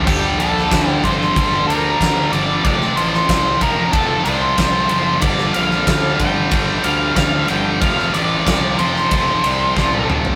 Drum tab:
CC |x---------------|----------------|----------------|----------------|
RD |--x-x-x-x-x-x-x-|x-x-x-x-x-x-x-x-|x-x-x-x-x-x-x-x-|x-x-x-x-x-x-----|
SD |---oo--o----o---|-o-oo-------o---|-o-oo-------o---|-o--o--o----o---|
T1 |----------------|----------------|----------------|-------------o--|
T2 |----------------|----------------|----------------|--------------o-|
FT |----------------|----------------|----------------|---------------o|
BD |o---o-o-o---o---|o---o-o-o---o---|o---o-o-o---o---|o---o---o---o---|